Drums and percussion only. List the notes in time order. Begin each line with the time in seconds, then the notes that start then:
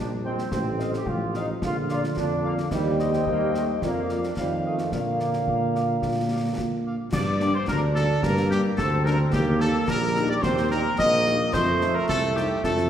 0.38 snare
0.52 concert bass drum, snare
0.79 snare
0.93 snare
1.06 concert bass drum
1.34 snare
1.62 concert bass drum, snare
1.89 snare
2.04 snare
2.17 concert bass drum, snare
2.58 snare
2.71 concert bass drum, snare, crash
2.99 snare
3.13 snare
3.27 concert bass drum
3.54 snare
3.82 concert bass drum, snare
4.09 snare
4.23 snare
4.37 concert bass drum, snare
4.78 snare
4.92 concert bass drum, snare
5.20 snare
5.33 snare
5.48 concert bass drum
5.75 snare
6.02 concert bass drum, snare
6.58 concert bass drum, snare
7.13 concert bass drum, snare, crash
7.40 snare
7.68 concert bass drum, snare
7.96 snare
8.23 concert bass drum, snare
8.37 snare
8.51 snare
8.78 concert bass drum, snare
9.06 snare
9.33 concert bass drum, snare
9.60 snare
9.88 concert bass drum, snare
10.16 snare
10.43 concert bass drum, snare
10.57 snare
10.71 snare
10.99 concert bass drum, snare
11.26 snare
11.54 concert bass drum, snare, crash
11.81 snare
12.09 concert bass drum, snare
12.37 snare
12.64 concert bass drum, snare
12.77 snare